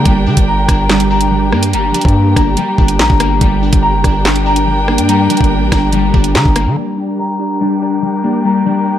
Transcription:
Already playing: D4 G4 A#4 G5 A#5
0.05 G1 G3, kick, closed hi-hat
0.26 D3 D4
0.37 G1, kick, closed hi-hat
0.48 A#5
0.68 G1 D4, kick, cross-stick, closed hi-hat
0.89 G3 D4, snare, clap, closed hi-hat
1.00 closed hi-hat
1.11 D4 A#5
1.21 closed hi-hat
1.31 G3
1.52 G2 A#3 D4, cross-stick
1.63 closed hi-hat
1.73 G1 G3 A#5, closed hi-hat
1.94 G3 D4, closed hi-hat
2.01 G2, kick, closed hi-hat
2.08 closed hi-hat
2.36 G1 D4 A#5, kick, cross-stick, closed hi-hat
2.57 G3, closed hi-hat
2.78 G1 D4, kick
2.88 closed hi-hat
2.99 A#1 A#5, snare, clap
3.10 G1, kick
3.20 A#3, cross-stick, closed hi-hat
3.41 G1 G3 D4 A#4 G5, kick, closed hi-hat
3.63 D4
3.73 G1, kick, closed hi-hat
3.82 A#5
3.94 F#1
4.04 G1 D4, kick, cross-stick, closed hi-hat
4.25 G3 D4, snare, clap, closed hi-hat
4.36 closed hi-hat
4.46 D4 A#5
4.56 closed hi-hat
4.67 G3
4.88 A#3 D4, cross-stick
4.98 G2, closed hi-hat
5.09 G3 A#5, closed hi-hat
5.30 G3 D4, closed hi-hat
5.37 G1, kick, closed hi-hat
5.44 closed hi-hat
5.62 A1
5.72 G1 D4 A#5, kick, cross-stick, snare, closed hi-hat
5.93 G3, closed hi-hat
6.13 G1 D4, kick
6.24 closed hi-hat
6.35 D3 A#5, snare, clap
6.45 G1, kick
6.56 A#3, cross-stick, closed hi-hat
6.66 D3
6.77 G3 D4 G4 A#4 G5
6.98 D4
7.19 A#5
7.40 D4
7.61 G3 D4
7.82 D4 A#5
8.02 G3
8.24 A#3 D4
8.45 G3 A#5
8.66 G3 D4

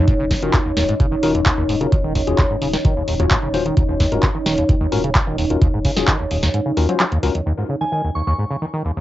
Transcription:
Already playing: D#4 C#5 F#5
0.08 D#1, kick, closed hi-hat
0.19 C#3
0.31 D#3, kick, snare, open hi-hat
0.42 D#1 D#3 C#4 F4 F#4 A#4, closed hi-hat
0.53 D#2, kick, clap, closed hi-hat
0.66 D#2
0.77 D#1 D#2, snare, open hi-hat
0.89 G#2, closed hi-hat
1.00 D#1 C#3, kick, closed hi-hat
1.12 D#3
1.23 D#1 D#3 C#4 F4 F#4 A#4, open hi-hat
1.35 D#2, closed hi-hat
1.46 D#2, kick, clap, closed hi-hat
1.58 D#1 D#2
1.69 G#2, open hi-hat
1.81 C#3 C#4 F4 F#4 A#4, closed hi-hat
1.92 D#1 D#3, kick, closed hi-hat
2.04 D#3
2.15 D#2, kick, open hi-hat
2.27 D#1 D#2 C#4 F4 F#4 G#4, closed hi-hat
2.38 D#2, kick, clap, closed hi-hat
2.50 G#2
2.62 D#1 C#3, open hi-hat
2.73 D#3, snare, closed hi-hat
2.85 D#1 D#3, kick, closed hi-hat
2.96 D#2
3.08 D#1 D#2, open hi-hat
3.19 D#2 C#4 F4 F#4 C#5, closed hi-hat
3.30 G#2, kick, clap, closed hi-hat
3.43 D#1 C#3
3.54 D#3 C#4 F4 F#4 C5, open hi-hat
3.66 D#3, closed hi-hat
3.77 D#1 D#2, kick, closed hi-hat
3.89 D#2
4.00 D#2, kick, snare, open hi-hat
4.12 D#1 G#2 C#4 F4 F#4 A#4, closed hi-hat
4.23 C#3, kick, clap, closed hi-hat
4.35 D#3
4.46 D#1 D#3, snare, open hi-hat
4.58 D#2, closed hi-hat
4.69 D#1 D#2, kick, closed hi-hat
4.81 D#2
4.92 D#1 G#2 C#4 F4 F#4 A#4, open hi-hat
5.04 C#3, closed hi-hat
5.15 D#3, kick, clap, closed hi-hat
5.27 D#1 D#3
5.38 D#2, open hi-hat
5.50 D#2 C#4 F4 F#4 A#4, closed hi-hat
5.62 D#1 D#2, kick, closed hi-hat
5.73 G#2
5.85 C#3, kick, open hi-hat
5.96 D#1 D#3 C#4 F4 F#4 G#4, snare, closed hi-hat
6.07 D#3, kick, clap, closed hi-hat
6.20 D#2
6.31 D#1 D#2, open hi-hat
6.43 D#2, snare, closed hi-hat
6.54 G#2, closed hi-hat
6.66 C#3
6.77 D#2 C#4 F4 F#4 A#4, open hi-hat
6.89 F#3 C#4 F4 F#4 C5, closed hi-hat
7.00 F#3, clap, closed hi-hat
7.12 D#2, closed hi-hat
7.23 C#2 C#4 F4 F#4 A#4, open hi-hat
7.35 D#2, closed hi-hat
7.46 D#2
7.58 G#2
7.69 C#3
7.81 D#3 F#5 G#5
7.92 D#3 G#5
8.04 D#2
8.15 D#2 C#6
8.27 D#2 C#6
8.39 G#2
8.51 C#3
8.62 D#3
8.74 D#3
8.85 D#2
8.97 D#2

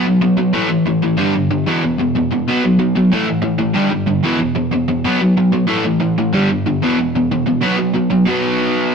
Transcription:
0.06 B2 F#3
0.21 B2 F#3
0.37 B2 F#3
0.53 A2 E3 A3
0.69 A2 E3
0.86 A2 E3
1.02 A2 E3
1.17 G2 D3 G3
1.35 G2 D3
1.51 G2 D3
1.66 E2 B2 E3
1.83 E2 B2
1.98 E2 B2
2.15 E2 B2
2.31 E2 B2
2.48 B2 F#3 B3
2.64 B2 F#3
2.79 B2 F#3
2.96 B2 F#3
3.12 A2 E3 A3
3.27 A2 E3
3.42 A2 E3
3.59 A2 E3
3.74 G2 D3 G3
3.91 G2 D3
4.07 G2 D3
4.24 E2 B2 E3
4.39 E2 B2
4.55 E2 B2
4.72 E2 B2
4.88 E2 B2
5.05 B2 F#3 B3
5.21 B2 F#3
5.37 B2 F#3
5.52 B2 F#3
5.67 A2 E3 A3
5.85 A2 E3
6.00 A2 E3
6.18 A2 E3
6.33 G2 D3 G3
6.49 G2 D3
6.66 G2 D3
6.82 E2 B2 E3
6.99 E2 B2
7.16 E2 B2
7.32 E2 B2
7.46 E2 B2
7.62 B2 F#3 B3
7.78 B2 F#3
7.94 B2 F#3
8.11 B2 F#3
8.26 B2 F#3
8.30 B3

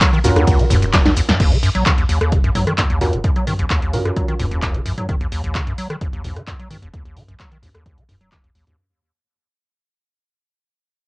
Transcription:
Already playing: A#4
0.01 F#3, kick, clap, closed hi-hat, ride, shaker
0.13 D#3, shaker
0.24 D#2 C#4 F4 F#4 A#4, mid tom, open hi-hat, shaker
0.36 D#2, cross-stick, closed hi-hat, high conga, shaker
0.47 C#2 D#2, kick, closed hi-hat, ride, shaker
0.59 D#3, closed hi-hat, shaker
0.70 D#1 D#2, mid tom, open hi-hat, shaker
0.82 D#1, closed hi-hat, shaker
0.93 D#1 D#2, kick, snare, clap, closed hi-hat, ride, shaker
1.06 D#2, snare, closed hi-hat, high conga, shaker
1.17 D#2, open hi-hat, shaker
1.29 D#2, snare, closed hi-hat, mid tom, shaker
1.40 D#1 D#2, kick, closed hi-hat, crash
1.52 D#3, closed hi-hat
1.63 F#2, open hi-hat
1.75 A#1 F#3, closed hi-hat
1.86 D#3, kick, clap, closed hi-hat
1.98 D#2, closed hi-hat
2.09 D#2, open hi-hat
2.21 D#2, cross-stick, closed hi-hat
2.32 F#1 D#3, kick, closed hi-hat
2.44 F#2, closed hi-hat
2.55 A#1 F#3, mid tom, open hi-hat
2.67 D#3, cross-stick, closed hi-hat
2.78 D#2, kick, clap, closed hi-hat
2.90 D#2, closed hi-hat
3.01 D#2 C#4 F4 F#4 A#4, mid tom, open hi-hat
3.13 D#1 D#3, closed hi-hat
3.24 F#2, kick, closed hi-hat
3.36 F#3, closed hi-hat
3.47 D#3, mid tom, open hi-hat
3.59 A#1 D#2, closed hi-hat
3.70 D#2, kick, clap, closed hi-hat
3.82 D#2, closed hi-hat
3.93 D#3 C#4 F4 F#4 A#4, mid tom, open hi-hat
4.05 F#2, cross-stick, closed hi-hat
4.17 C#2 F#3, kick, closed hi-hat
4.28 D#3, closed hi-hat
4.40 D#1 D#2, mid tom, open hi-hat
4.52 D#2, closed hi-hat
4.63 D#2, kick, clap, closed hi-hat
4.75 D#3, closed hi-hat
4.86 A#1 F#2, open hi-hat
4.98 F#3, closed hi-hat, mid tom
5.09 D#1 D#3, kick, closed hi-hat
5.21 D#2, closed hi-hat
5.32 D#2, open hi-hat
5.44 A#1 D#2, closed hi-hat
5.55 D#3, kick, clap, closed hi-hat
5.67 F#2, closed hi-hat
5.78 F#3, open hi-hat
5.90 D#3, cross-stick, closed hi-hat
6.01 F#1 D#2, kick, closed hi-hat
6.13 D#2, closed hi-hat
6.24 A#1 D#2, mid tom, open hi-hat
6.36 D#3, cross-stick, closed hi-hat
6.47 F#2, kick, clap, closed hi-hat
6.59 F#3, closed hi-hat
6.70 D#3, mid tom, open hi-hat
6.82 D#1 D#2, closed hi-hat
6.93 D#2, kick, closed hi-hat
7.05 D#2, closed hi-hat
7.17 D#3, mid tom, open hi-hat
7.28 A#1 F#2, closed hi-hat
7.39 F#3, kick, clap, closed hi-hat
7.51 D#3, closed hi-hat
7.62 D#2, mid tom, open hi-hat
7.74 D#2, cross-stick, closed hi-hat
7.86 C#2 D#2, kick, closed hi-hat
7.98 D#3, closed hi-hat
8.09 D#1 F#2, mid tom, open hi-hat
8.21 F#3, closed hi-hat
8.32 D#3, kick, clap, closed hi-hat
8.44 D#2, closed hi-hat
8.55 A#1 D#2, open hi-hat
8.67 D#2, closed hi-hat, mid tom

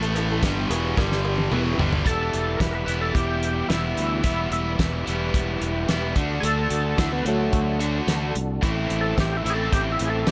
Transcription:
Already playing: A1 A2 E3 A3 E4 A4
0.02 closed hi-hat
0.15 closed hi-hat, cowbell
0.42 G1 G2 D3 G3 B3 E4 G4, kick, snare, closed hi-hat
0.70 E1 E2 B2 E3, closed hi-hat, cowbell
0.97 G1 G2 D3 G3 D4 G4, kick, snare, cowbell
1.12 snare
1.25 cowbell
1.38 high tom
1.51 E1 E2 B2 E3 B3 E4 G4, mid tom, cowbell
1.78 G1 G2 D3 G3, floor tom
1.93 floor tom
2.05 E1 E3 G3 B3 E4 G4 A4, kick, closed hi-hat
2.33 E1, closed hi-hat
2.57 E1 A#4, kick
2.61 B4, snare, closed hi-hat
2.70 A#4
2.75 B4
2.86 E1 E3 G3 B3 E4, closed hi-hat
3.01 A4
3.14 E1 G4, kick, closed hi-hat
3.43 closed hi-hat
3.69 E1 E3 G3 B3 E4, snare, closed hi-hat
3.97 D2, closed hi-hat
4.24 E1 E3 G3 B3 E4 G4, kick, closed hi-hat
4.51 E1 E4, closed hi-hat
4.79 E1, kick, snare, closed hi-hat
5.06 E1 E3 G3 B3 E4, closed hi-hat
5.34 E1, kick, closed hi-hat
5.61 E1, closed hi-hat
5.88 E1 E3 G3 B3 E4, snare, closed hi-hat
6.15 D2 D3 A3 D4 F#4, kick, closed hi-hat
6.20 D4 F#4 A4
6.40 D2 G#4, closed hi-hat
6.45 A4
6.70 D2, closed hi-hat
6.98 D2 D3 A3 D4 E4 F#4, kick, snare, closed hi-hat
7.13 B3
7.25 D2 F#3 A3, closed hi-hat
7.53 D2, kick, closed hi-hat
7.80 D3 A3 D4 F#4, closed hi-hat
8.07 D2, snare, closed hi-hat
8.35 C2, closed hi-hat
8.62 A1 A2 E3 A3 C4 E4 A4, kick, closed hi-hat
8.90 A1, closed hi-hat
9.01 A4
9.18 A1 G4, kick, snare, closed hi-hat
9.37 E4
9.44 A1 A2 E3 A3 C4 E4, closed hi-hat
9.50 G#4
9.55 A4
9.73 A1 G4, kick, closed hi-hat
9.92 E4
9.99 A1, closed hi-hat
10.05 G#4
10.10 A4
10.27 A2 E3 A3, snare, closed hi-hat

